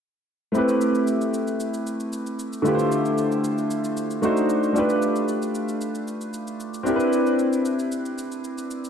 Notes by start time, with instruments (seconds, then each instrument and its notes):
0.52 grand piano A3 C4 E4, shaker
0.56 grand piano G4 B4
0.69 shaker
0.81 shaker
0.95 shaker
1.07 shaker
1.21 shaker
1.34 shaker
1.48 shaker
1.60 shaker
1.74 shaker
1.87 shaker
2.00 shaker
2.13 shaker
2.26 shaker
2.39 shaker
2.53 shaker
2.62 grand piano D3 A3 E4 F4, shaker
2.67 grand piano G4 B4
2.75 grand piano C5
2.79 shaker
2.92 shaker
3.05 shaker
3.18 shaker
3.32 shaker
3.44 shaker
3.58 shaker
3.71 shaker
3.84 shaker
3.97 shaker
4.11 shaker
4.22 grand piano A3 D4 D#4 F#4 C5, shaker
4.37 shaker
4.50 shaker
4.63 shaker
4.73 grand piano A3 D4 F4, shaker
4.77 grand piano G4 B4
4.90 shaker
5.02 shaker
5.16 shaker
5.28 shaker
5.42 shaker
5.55 shaker
5.69 shaker
5.81 shaker
5.95 shaker
6.08 shaker
6.21 shaker
6.34 shaker
6.47 shaker
6.60 shaker
6.74 shaker
6.83 grand piano C4 D4 E4, shaker
6.88 grand piano G4 A#4
6.96 grand piano B4
7.00 shaker
7.13 shaker
7.26 shaker
7.39 shaker
7.53 shaker
7.65 shaker
7.79 shaker
7.92 shaker
8.05 shaker
8.18 shaker
8.32 shaker
8.44 shaker
8.58 shaker
8.71 shaker
8.85 shaker